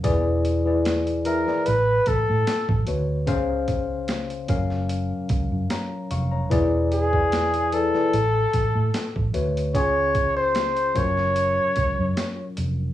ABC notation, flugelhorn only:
X:1
M:4/4
L:1/16
Q:"Swing 16ths" 1/4=74
K:Gblyd
V:1 name="Flugelhorn"
z6 B2 =B2 =A4 z2 | z16 | z2 ^G4 =A8 z2 | d3 c3 d8 z2 |]